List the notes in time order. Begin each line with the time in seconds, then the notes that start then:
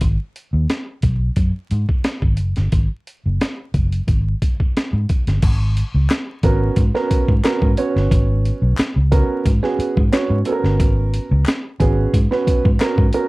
0.01 G#1, kick, closed hi-hat
0.36 closed hi-hat
0.53 D#2
0.69 snare, closed hi-hat
1.02 B1, kick, closed hi-hat
1.36 F#2, kick, closed hi-hat
1.71 G#2, closed hi-hat
1.89 kick
2.04 snare, closed hi-hat
2.22 G#1, kick
2.37 F#1, closed hi-hat
2.56 G1, snare, closed hi-hat
2.72 G#1, kick, closed hi-hat
3.07 closed hi-hat
3.26 F#1
3.41 snare, closed hi-hat
3.74 F#1, kick, closed hi-hat
3.92 closed hi-hat
4.07 G#1, kick, closed hi-hat
4.42 kick, closed hi-hat
4.60 kick
4.77 snare, closed hi-hat
4.93 G#2
5.09 kick, closed hi-hat
5.27 G1, snare, closed hi-hat
5.42 G#1, kick, closed hi-hat, crash
5.77 closed hi-hat
5.94 C#2
6.10 snare, clap, closed hi-hat
6.43 G#1 B3 C#4 F#4 A#4, kick, closed hi-hat
6.76 G#2, kick, closed hi-hat
6.94 B3 C#4 F#4 A#4, snare
7.10 muted fingered electric bass stroke, kick, closed hi-hat
7.28 G#2, kick
7.44 B3 C#4 F#4 A#4, snare, clap, closed hi-hat
7.62 G#2, kick
7.77 B3 C#4 F#4 C#5, closed hi-hat
7.96 G1, snare
8.11 G#1, kick, closed hi-hat
8.45 closed hi-hat
8.62 B1
8.78 muted fingered electric bass stroke, snare, clap, closed hi-hat
8.96 C#2
9.11 B3 C#4 F#4 A#4, kick, closed hi-hat
9.46 G#2, kick, closed hi-hat
9.63 B3 C#4 F#4 G#4, snare
9.79 muted fingered electric bass stroke, closed hi-hat
9.97 G#2, kick
10.12 B3 C#4 F#4 C#5, snare, clap, closed hi-hat
10.30 G#2
10.45 B3 C#4 F#4 A4, closed hi-hat
10.52 A#4
10.64 G1, snare
10.79 G#1, kick, closed hi-hat
11.14 closed hi-hat
11.31 C#2
11.46 snare, clap, closed hi-hat
11.79 G#1 B3 C#4 F#4 G#4, kick, closed hi-hat
12.14 G#2, kick, closed hi-hat
12.31 B3 C#4 F#4 B4, snare
12.47 muted fingered electric bass stroke, kick, closed hi-hat
12.65 G#2, kick
12.80 B3 C#4 F#4 A#4, snare, clap, closed hi-hat
12.98 G#2, kick
13.13 B3 C#4 F#4 A#4, closed hi-hat